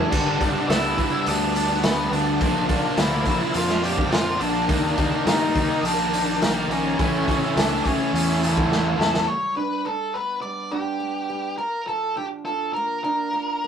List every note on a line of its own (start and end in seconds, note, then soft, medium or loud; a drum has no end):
0.00 0.10 E3 loud
0.00 0.10 A3 medium
0.00 0.11 A3 loud
0.00 0.65 D4 medium
0.00 0.71 D5 loud
0.10 0.38 G1 loud
0.10 0.66 G2 loud
0.10 0.38 D3 loud
0.10 0.39 G3 loud
0.10 0.39 B3 loud
0.10 0.41 D4 loud
0.10 2.37 G4 medium
0.10 2.38 B4 medium
0.10 4.64 D5 medium
0.10 2.37 B5 medium
0.10 kick loud
0.10 crash loud
0.39 0.54 G1 medium
0.39 0.66 D3 medium
0.39 0.67 G3 medium
0.39 0.67 B3 medium
0.39 0.68 D4 medium
0.39 kick loud
0.39 open hi-hat medium
0.67 0.95 C#2 loud
0.67 1.11 G2 loud
0.67 0.95 D3 medium
0.67 0.83 G3 loud
0.67 0.82 B3 medium
0.67 0.82 D4 loud
0.67 1.22 E4 medium
0.67 1.28 E5 loud
0.67 snare loud
0.67 open hi-hat medium
0.83 0.97 G3 medium
0.83 0.97 B3 medium
0.83 0.99 D4 medium
0.97 1.11 G1 medium
0.97 1.40 D3 medium
0.97 1.13 G3 medium
0.97 1.12 B3 medium
0.97 1.11 D4 medium
0.97 kick medium
0.97 open hi-hat medium
1.12 1.41 G3 medium
1.12 1.41 B3 medium
1.12 1.39 D4 medium
1.26 2.08 D2 loud
1.26 1.81 D4 medium
1.26 1.80 D5 medium
1.26 open hi-hat medium
1.40 1.54 G3 medium
1.40 1.55 B3 medium
1.40 1.55 D4 medium
1.54 1.83 D3 medium
1.54 1.70 G3 medium
1.54 1.69 B3 medium
1.54 1.69 D4 medium
1.54 open hi-hat medium
1.70 1.83 G3 medium
1.70 1.83 B3 medium
1.70 1.84 D4 medium
1.83 2.38 G2 medium
1.83 2.10 D3 loud
1.83 2.11 G3 loud
1.83 2.11 B3 loud
1.83 2.11 B3 medium
1.83 2.12 D4 loud
1.83 2.11 B4 medium
1.83 snare loud
1.83 open hi-hat medium
2.11 2.38 D2 medium
2.11 2.38 D3 medium
2.11 2.26 G3 medium
2.11 2.26 B3 medium
2.11 2.94 D4 medium
2.11 2.24 D4 medium
2.11 2.94 D5 medium
2.11 open hi-hat medium
2.25 2.39 G3 medium
2.25 2.39 B3 medium
2.25 2.38 D4 medium
2.39 2.67 A#1 loud
2.39 2.95 A#2 loud
2.39 2.66 D3 loud
2.39 4.67 F3 medium
2.39 2.67 F3 loud
2.39 2.68 A#3 loud
2.39 2.68 D4 loud
2.39 6.94 A#4 medium
2.39 4.67 A#5 medium
2.39 kick loud
2.39 open hi-hat medium
2.67 2.82 A#1 medium
2.67 2.95 D3 medium
2.67 2.96 F3 medium
2.67 2.97 A#3 medium
2.67 2.97 D4 loud
2.67 kick loud
2.67 open hi-hat medium
2.96 3.24 D2 loud
2.96 3.40 A#2 medium
2.96 3.24 D3 loud
2.96 3.11 F3 loud
2.96 3.11 A#3 loud
2.96 3.09 D4 loud
2.96 3.52 E4 medium
2.96 3.55 E5 medium
2.96 snare loud
2.96 open hi-hat medium
3.10 3.25 F3 medium
3.10 3.27 A#3 medium
3.10 3.26 D4 medium
3.25 3.39 A#1 medium
3.25 3.68 D3 medium
3.25 3.40 F3 medium
3.25 3.40 A#3 medium
3.25 3.38 D4 loud
3.25 kick medium
3.25 open hi-hat medium
3.40 3.70 F3 medium
3.40 3.69 A#3 medium
3.40 3.67 D4 medium
3.54 4.36 F2 medium
3.54 3.82 F4 medium
3.54 3.81 F5 loud
3.54 open hi-hat medium
3.68 3.82 F3 medium
3.68 3.82 A#3 medium
3.68 3.83 D4 medium
3.68 snare soft
3.82 4.09 D3 medium
3.82 3.97 F3 medium
3.82 3.96 A#3 medium
3.82 3.95 D4 medium
3.82 4.10 G4 medium
3.82 4.11 G5 medium
3.82 open hi-hat medium
3.96 4.09 F3 medium
3.96 4.10 A#3 medium
3.96 4.10 D4 medium
3.96 kick medium
4.09 4.66 A#2 loud
4.09 4.35 D3 loud
4.09 4.36 F3 loud
4.09 4.37 A#3 loud
4.09 4.38 D4 loud
4.09 4.38 F4 medium
4.09 4.41 F5 medium
4.09 open hi-hat medium
4.13 snare loud
4.37 4.65 D3 medium
4.37 4.53 F3 medium
4.37 4.52 A#3 medium
4.37 4.51 D4 medium
4.41 4.67 A#1 medium
4.41 5.23 D4 loud
4.41 5.26 D5 loud
4.41 open hi-hat medium
4.52 4.67 F3 medium
4.52 4.67 A#3 medium
4.52 4.66 D4 medium
4.66 4.96 D#2 medium
4.66 4.95 D#3 medium
4.66 6.95 D#3 medium
4.66 4.96 G3 loud
4.66 4.96 A#3 loud
4.66 4.97 D#4 loud
4.66 6.95 G5 medium
4.66 6.96 A#5 medium
4.66 kick loud
4.66 open hi-hat medium
4.97 5.11 D#2 medium
4.97 5.23 D#3 medium
4.97 5.25 G3 medium
4.97 5.25 A#3 medium
4.97 5.26 D#4 medium
4.97 kick loud
4.97 open hi-hat medium
5.25 5.53 G2 loud
5.25 5.52 D#3 medium
5.25 5.40 G3 loud
5.25 5.40 A#3 loud
5.25 5.79 D#4 medium
5.25 5.38 D#4 loud
5.25 5.85 D#5 medium
5.25 snare loud
5.25 open hi-hat loud
5.39 5.53 G3 medium
5.39 5.54 A#3 medium
5.39 5.54 D#4 medium
5.53 5.69 D#2 medium
5.53 5.97 D#3 medium
5.53 5.68 G3 medium
5.53 5.68 A#3 loud
5.53 5.66 D#4 loud
5.53 kick medium
5.53 open hi-hat medium
5.67 5.99 G3 medium
5.67 5.97 A#3 medium
5.67 5.96 D#4 medium
5.83 6.65 A#1 loud
5.83 6.38 D4 medium
5.83 6.38 D5 medium
5.83 open hi-hat medium
5.97 6.11 G3 medium
5.97 6.11 A#3 medium
5.97 6.12 D#4 medium
6.11 6.38 D#3 medium
6.11 6.27 G3 medium
6.11 6.26 A#3 medium
6.11 6.25 D#4 medium
6.11 open hi-hat medium
6.27 6.40 G3 medium
6.27 6.40 A#3 medium
6.27 6.41 D#4 medium
6.40 6.68 D#3 medium
6.40 6.69 G3 loud
6.40 6.70 A#3 loud
6.40 6.68 A#3 medium
6.40 6.71 D#4 loud
6.40 6.71 A#4 medium
6.40 snare loud
6.40 open hi-hat medium
6.68 6.95 A#1 medium
6.68 6.97 D#3 medium
6.68 6.85 G3 medium
6.68 6.83 A#3 medium
6.68 7.52 C#4 medium
6.68 6.82 D#4 medium
6.68 7.52 C#5 medium
6.68 open hi-hat medium
6.83 6.98 G3 medium
6.83 6.97 A#3 medium
6.83 6.96 D#4 medium
6.97 7.26 A1 medium
6.97 7.55 A2 loud
6.97 7.25 E3 loud
6.97 7.26 A3 loud
6.97 9.26 C#4 medium
6.97 7.26 C#4 medium
6.97 7.27 E4 loud
6.97 9.26 A4 medium
6.97 9.26 E5 medium
6.97 9.26 A5 medium
6.97 kick loud
6.97 open hi-hat medium
7.26 7.41 A1 medium
7.26 7.55 E3 medium
7.26 7.56 A3 medium
7.26 7.56 C#4 medium
7.26 7.57 E4 medium
7.26 kick medium
7.26 open hi-hat medium
7.55 7.82 C#2 loud
7.55 7.99 A2 medium
7.55 7.82 E3 medium
7.55 7.72 A3 medium
7.55 7.71 C#4 loud
7.55 7.82 D4 medium
7.55 7.69 E4 loud
7.55 7.86 D5 medium
7.55 snare loud
7.55 open hi-hat medium
7.71 7.83 A3 medium
7.71 7.84 C#4 medium
7.71 7.85 E4 medium
7.84 7.98 A1 medium
7.84 8.27 E3 medium
7.84 8.00 A3 medium
7.84 7.99 C#4 medium
7.84 8.97 C#4 medium
7.84 7.98 E4 medium
7.84 8.97 C#5 medium
7.84 kick medium
7.84 open hi-hat medium
7.99 8.30 A3 medium
7.99 8.29 C#4 medium
7.99 8.28 E4 medium
8.13 8.96 E2 loud
8.13 open hi-hat loud
8.29 8.43 A3 medium
8.29 8.44 C#4 medium
8.29 8.45 E4 medium
8.43 8.70 E3 medium
8.43 8.57 A3 medium
8.43 8.56 C#4 medium
8.43 8.55 E4 medium
8.43 9.25 A4 loud
8.43 open hi-hat medium
8.56 8.70 A3 medium
8.56 8.71 C#4 medium
8.56 8.72 E4 medium
8.56 kick medium
8.70 9.27 A2 loud
8.70 8.98 E3 loud
8.70 8.99 A3 loud
8.70 8.99 C#4 medium
8.70 9.00 E4 loud
8.70 snare medium
8.98 9.26 E2 medium
8.98 9.27 E3 medium
8.98 9.14 A3 medium
8.98 9.13 C#4 medium
8.98 9.11 E4 medium
8.98 snare loud
9.12 9.27 A3 medium
9.12 9.27 C#4 medium
9.12 9.26 E4 medium
9.12 snare medium
9.27 10.41 G3 medium
9.27 9.56 C#5 medium
9.56 9.84 D4 medium
9.56 9.87 B4 medium
9.85 10.70 D4 medium
9.85 10.16 A4 medium
10.14 10.99 B3 medium
10.14 10.41 B4 medium
10.42 11.29 G3 medium
10.42 10.73 D5 medium
10.72 11.59 D4 medium
10.72 11.55 G4 medium
11.00 11.59 B3 medium
11.30 11.59 G3 medium
11.58 13.04 A#2 medium
11.58 11.87 A#4 medium
11.88 13.34 F3 medium
11.88 12.15 A4 medium
12.17 13.03 D4 medium
12.17 12.25 G4 medium
12.45 13.32 F4 medium
12.45 12.73 A4 medium
12.73 13.63 A#3 medium
12.73 13.03 A#4 medium
13.04 13.67 D4 medium
13.04 13.67 A#4 medium
13.33 13.67 F4 medium
13.64 13.67 A#3 medium